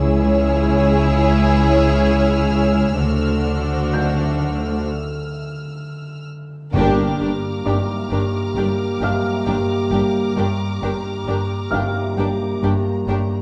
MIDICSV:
0, 0, Header, 1, 11, 480
1, 0, Start_track
1, 0, Tempo, 914634
1, 1072, Tempo, 936037
1, 1552, Time_signature, 4, 2, 24, 8
1, 3952, Tempo, 903614
1, 7011, End_track
2, 0, Start_track
2, 0, Title_t, "Violin section"
2, 0, Program_c, 0, 48
2, 0, Note_on_c, 0, 88, 47
2, 110, Note_on_c, 0, 89, 44
2, 3219, Note_off_c, 0, 89, 0
2, 3222, Note_off_c, 0, 88, 0
2, 3477, Note_on_c, 0, 82, 29
2, 3477, Note_on_c, 0, 86, 31
2, 3477, Note_on_c, 0, 89, 30
2, 6091, Note_off_c, 0, 89, 0
2, 6571, Note_off_c, 0, 86, 0
2, 7011, Note_off_c, 0, 82, 0
2, 7011, End_track
3, 0, Start_track
3, 0, Title_t, "Felt piano"
3, 0, Program_c, 1, 0
3, 0, Control_c, 1, 64, 127
3, 1562, Control_c, 1, 64, 0
3, 1662, Control_c, 1, 64, 127
3, 2042, Note_on_c, 1, 91, 36
3, 2500, Note_off_c, 1, 91, 0
3, 3488, Control_c, 1, 64, 0
3, 3579, Control_c, 1, 64, 127
3, 3951, Note_on_c, 1, 86, 25
3, 3954, Note_on_c, 1, 74, 23
3, 4681, Note_on_c, 1, 77, 25
3, 4682, Note_on_c, 1, 89, 34
3, 5371, Note_off_c, 1, 86, 0
3, 5373, Note_off_c, 1, 74, 0
3, 6095, Note_off_c, 1, 89, 0
3, 6096, Note_off_c, 1, 77, 0
3, 6103, Note_on_c, 1, 89, 35
3, 6107, Note_on_c, 1, 77, 27
3, 7011, Note_off_c, 1, 77, 0
3, 7011, Note_off_c, 1, 89, 0
3, 7011, End_track
4, 0, Start_track
4, 0, Title_t, "Violin section"
4, 0, Program_c, 2, 48
4, 0, Note_on_c, 2, 73, 66
4, 1533, Note_off_c, 2, 73, 0
4, 1551, Note_on_c, 2, 72, 48
4, 2496, Note_off_c, 2, 72, 0
4, 3483, Note_on_c, 2, 70, 52
4, 3701, Note_off_c, 2, 70, 0
4, 3719, Note_on_c, 2, 70, 36
4, 3760, Note_off_c, 2, 70, 0
4, 3958, Note_on_c, 2, 70, 36
4, 4000, Note_off_c, 2, 70, 0
4, 4196, Note_on_c, 2, 70, 34
4, 4238, Note_off_c, 2, 70, 0
4, 4436, Note_on_c, 2, 70, 38
4, 4479, Note_off_c, 2, 70, 0
4, 4676, Note_on_c, 2, 70, 33
4, 4719, Note_off_c, 2, 70, 0
4, 4910, Note_on_c, 2, 70, 35
4, 4953, Note_off_c, 2, 70, 0
4, 5156, Note_on_c, 2, 70, 33
4, 5198, Note_off_c, 2, 70, 0
4, 5394, Note_on_c, 2, 70, 39
4, 5437, Note_off_c, 2, 70, 0
4, 5635, Note_on_c, 2, 70, 39
4, 5678, Note_off_c, 2, 70, 0
4, 5871, Note_on_c, 2, 70, 35
4, 5914, Note_off_c, 2, 70, 0
4, 6113, Note_on_c, 2, 70, 35
4, 6155, Note_off_c, 2, 70, 0
4, 6356, Note_on_c, 2, 70, 37
4, 6399, Note_off_c, 2, 70, 0
4, 6594, Note_on_c, 2, 70, 34
4, 6636, Note_off_c, 2, 70, 0
4, 6829, Note_on_c, 2, 70, 41
4, 6872, Note_off_c, 2, 70, 0
4, 7011, End_track
5, 0, Start_track
5, 0, Title_t, "Violin section"
5, 0, Program_c, 3, 48
5, 0, Note_on_c, 3, 68, 65
5, 1534, Note_off_c, 3, 68, 0
5, 1555, Note_on_c, 3, 66, 46
5, 2498, Note_off_c, 3, 66, 0
5, 3480, Note_on_c, 3, 67, 55
5, 3699, Note_off_c, 3, 67, 0
5, 3718, Note_on_c, 3, 67, 34
5, 3759, Note_off_c, 3, 67, 0
5, 3954, Note_on_c, 3, 67, 33
5, 3997, Note_off_c, 3, 67, 0
5, 4193, Note_on_c, 3, 67, 29
5, 4235, Note_off_c, 3, 67, 0
5, 4437, Note_on_c, 3, 67, 37
5, 4479, Note_off_c, 3, 67, 0
5, 4672, Note_on_c, 3, 67, 33
5, 4714, Note_off_c, 3, 67, 0
5, 4902, Note_on_c, 3, 67, 38
5, 4945, Note_off_c, 3, 67, 0
5, 5148, Note_on_c, 3, 67, 37
5, 5190, Note_off_c, 3, 67, 0
5, 5393, Note_on_c, 3, 67, 43
5, 5435, Note_off_c, 3, 67, 0
5, 5636, Note_on_c, 3, 67, 38
5, 5679, Note_off_c, 3, 67, 0
5, 5883, Note_on_c, 3, 67, 35
5, 5925, Note_off_c, 3, 67, 0
5, 6117, Note_on_c, 3, 67, 33
5, 6159, Note_off_c, 3, 67, 0
5, 6352, Note_on_c, 3, 67, 36
5, 6395, Note_off_c, 3, 67, 0
5, 6594, Note_on_c, 3, 67, 35
5, 6637, Note_off_c, 3, 67, 0
5, 6839, Note_on_c, 3, 67, 40
5, 6881, Note_off_c, 3, 67, 0
5, 7011, End_track
6, 0, Start_track
6, 0, Title_t, "French horn section"
6, 0, Program_c, 4, 60
6, 3484, Note_on_c, 4, 58, 64
6, 3486, Note_on_c, 4, 67, 55
6, 5374, Note_off_c, 4, 58, 0
6, 5375, Note_off_c, 4, 67, 0
6, 5403, Note_on_c, 4, 58, 49
6, 5403, Note_on_c, 4, 67, 49
6, 7011, Note_off_c, 4, 58, 0
6, 7011, Note_off_c, 4, 67, 0
6, 7011, End_track
7, 0, Start_track
7, 0, Title_t, "Viola section"
7, 0, Program_c, 5, 48
7, 0, Note_on_c, 5, 64, 64
7, 1533, Note_off_c, 5, 64, 0
7, 1553, Note_on_c, 5, 62, 47
7, 2497, Note_off_c, 5, 62, 0
7, 3480, Note_on_c, 5, 62, 50
7, 3699, Note_off_c, 5, 62, 0
7, 3718, Note_on_c, 5, 62, 32
7, 3759, Note_off_c, 5, 62, 0
7, 3951, Note_on_c, 5, 62, 33
7, 3994, Note_off_c, 5, 62, 0
7, 4195, Note_on_c, 5, 62, 35
7, 4237, Note_off_c, 5, 62, 0
7, 4438, Note_on_c, 5, 62, 36
7, 4481, Note_off_c, 5, 62, 0
7, 4677, Note_on_c, 5, 62, 35
7, 4719, Note_off_c, 5, 62, 0
7, 4915, Note_on_c, 5, 62, 36
7, 4957, Note_off_c, 5, 62, 0
7, 5155, Note_on_c, 5, 62, 34
7, 5198, Note_off_c, 5, 62, 0
7, 5394, Note_on_c, 5, 62, 37
7, 5437, Note_off_c, 5, 62, 0
7, 5633, Note_on_c, 5, 62, 34
7, 5675, Note_off_c, 5, 62, 0
7, 5875, Note_on_c, 5, 62, 35
7, 5917, Note_off_c, 5, 62, 0
7, 6116, Note_on_c, 5, 62, 35
7, 6159, Note_off_c, 5, 62, 0
7, 6358, Note_on_c, 5, 62, 40
7, 6401, Note_off_c, 5, 62, 0
7, 6596, Note_on_c, 5, 62, 38
7, 6638, Note_off_c, 5, 62, 0
7, 6837, Note_on_c, 5, 62, 37
7, 6879, Note_off_c, 5, 62, 0
7, 7011, End_track
8, 0, Start_track
8, 0, Title_t, "Harp"
8, 0, Program_c, 6, 46
8, 0, Note_on_c, 6, 49, 47
8, 110, Note_off_c, 6, 49, 0
8, 116, Note_on_c, 6, 49, 45
8, 346, Note_off_c, 6, 49, 0
8, 352, Note_on_c, 6, 49, 60
8, 591, Note_on_c, 6, 61, 45
8, 820, Note_off_c, 6, 49, 0
8, 827, Note_on_c, 6, 49, 37
8, 1057, Note_off_c, 6, 49, 0
8, 1063, Note_on_c, 6, 49, 50
8, 1302, Note_off_c, 6, 49, 0
8, 1308, Note_on_c, 6, 49, 36
8, 1551, Note_on_c, 6, 50, 49
8, 1570, Note_off_c, 6, 49, 0
8, 1572, Note_off_c, 6, 61, 0
8, 1789, Note_off_c, 6, 50, 0
8, 1796, Note_on_c, 6, 50, 33
8, 2034, Note_off_c, 6, 50, 0
8, 2040, Note_on_c, 6, 50, 34
8, 2270, Note_off_c, 6, 50, 0
8, 2276, Note_on_c, 6, 50, 45
8, 3477, Note_on_c, 6, 43, 49
8, 3498, Note_off_c, 6, 50, 0
8, 3706, Note_off_c, 6, 43, 0
8, 3712, Note_on_c, 6, 43, 36
8, 3941, Note_off_c, 6, 43, 0
8, 3947, Note_on_c, 6, 43, 34
8, 4187, Note_off_c, 6, 43, 0
8, 4193, Note_on_c, 6, 43, 47
8, 4434, Note_on_c, 6, 55, 34
8, 4664, Note_off_c, 6, 43, 0
8, 4671, Note_on_c, 6, 43, 32
8, 4904, Note_off_c, 6, 43, 0
8, 4911, Note_on_c, 6, 43, 46
8, 5148, Note_off_c, 6, 55, 0
8, 5154, Note_on_c, 6, 55, 34
8, 5384, Note_off_c, 6, 43, 0
8, 5391, Note_on_c, 6, 43, 55
8, 5628, Note_off_c, 6, 43, 0
8, 5635, Note_on_c, 6, 43, 36
8, 5865, Note_off_c, 6, 43, 0
8, 5871, Note_on_c, 6, 43, 38
8, 6106, Note_off_c, 6, 43, 0
8, 6112, Note_on_c, 6, 43, 46
8, 6345, Note_off_c, 6, 55, 0
8, 6352, Note_on_c, 6, 55, 37
8, 6580, Note_off_c, 6, 43, 0
8, 6587, Note_on_c, 6, 43, 37
8, 6819, Note_off_c, 6, 43, 0
8, 6825, Note_on_c, 6, 43, 50
8, 7011, Note_off_c, 6, 43, 0
8, 7011, Note_off_c, 6, 55, 0
8, 7011, End_track
9, 0, Start_track
9, 0, Title_t, "Cello section"
9, 0, Program_c, 7, 48
9, 0, Note_on_c, 7, 37, 58
9, 1531, Note_off_c, 7, 37, 0
9, 1551, Note_on_c, 7, 38, 41
9, 2497, Note_off_c, 7, 38, 0
9, 3476, Note_on_c, 7, 43, 57
9, 3697, Note_off_c, 7, 43, 0
9, 3713, Note_on_c, 7, 43, 41
9, 3754, Note_off_c, 7, 43, 0
9, 3946, Note_on_c, 7, 43, 37
9, 3988, Note_off_c, 7, 43, 0
9, 4191, Note_on_c, 7, 43, 39
9, 4234, Note_off_c, 7, 43, 0
9, 4430, Note_on_c, 7, 43, 44
9, 4473, Note_off_c, 7, 43, 0
9, 4668, Note_on_c, 7, 43, 40
9, 4711, Note_off_c, 7, 43, 0
9, 4910, Note_on_c, 7, 43, 42
9, 4953, Note_off_c, 7, 43, 0
9, 5150, Note_on_c, 7, 43, 36
9, 5192, Note_off_c, 7, 43, 0
9, 5391, Note_on_c, 7, 43, 43
9, 5433, Note_off_c, 7, 43, 0
9, 5629, Note_on_c, 7, 43, 40
9, 5672, Note_off_c, 7, 43, 0
9, 5869, Note_on_c, 7, 43, 39
9, 5911, Note_off_c, 7, 43, 0
9, 6111, Note_on_c, 7, 43, 39
9, 6154, Note_off_c, 7, 43, 0
9, 6351, Note_on_c, 7, 43, 43
9, 6393, Note_off_c, 7, 43, 0
9, 6591, Note_on_c, 7, 43, 45
9, 6634, Note_off_c, 7, 43, 0
9, 6833, Note_on_c, 7, 43, 44
9, 6875, Note_off_c, 7, 43, 0
9, 7011, End_track
10, 0, Start_track
10, 0, Title_t, "Timpani"
10, 0, Program_c, 8, 47
10, 3477, Note_on_c, 8, 43, 58
10, 4170, Note_off_c, 8, 43, 0
10, 7011, End_track
11, 0, Start_track
11, 0, Title_t, "Double bass section"
11, 0, Program_c, 10, 48
11, 0, Note_on_c, 10, 37, 61
11, 1534, Note_off_c, 10, 37, 0
11, 1549, Note_on_c, 10, 38, 41
11, 2497, Note_off_c, 10, 38, 0
11, 3479, Note_on_c, 10, 31, 65
11, 3699, Note_off_c, 10, 31, 0
11, 3718, Note_on_c, 10, 31, 39
11, 3759, Note_off_c, 10, 31, 0
11, 3954, Note_on_c, 10, 31, 41
11, 3996, Note_off_c, 10, 31, 0
11, 4192, Note_on_c, 10, 31, 38
11, 4234, Note_off_c, 10, 31, 0
11, 4429, Note_on_c, 10, 31, 44
11, 4471, Note_off_c, 10, 31, 0
11, 4670, Note_on_c, 10, 31, 40
11, 4712, Note_off_c, 10, 31, 0
11, 4912, Note_on_c, 10, 31, 39
11, 4955, Note_off_c, 10, 31, 0
11, 5153, Note_on_c, 10, 31, 43
11, 5196, Note_off_c, 10, 31, 0
11, 5391, Note_on_c, 10, 31, 46
11, 5433, Note_off_c, 10, 31, 0
11, 5633, Note_on_c, 10, 31, 38
11, 5675, Note_off_c, 10, 31, 0
11, 5869, Note_on_c, 10, 31, 39
11, 5912, Note_off_c, 10, 31, 0
11, 6111, Note_on_c, 10, 31, 36
11, 6153, Note_off_c, 10, 31, 0
11, 6351, Note_on_c, 10, 31, 44
11, 6394, Note_off_c, 10, 31, 0
11, 6595, Note_on_c, 10, 31, 39
11, 6637, Note_off_c, 10, 31, 0
11, 6828, Note_on_c, 10, 31, 42
11, 6871, Note_off_c, 10, 31, 0
11, 7011, End_track
0, 0, End_of_file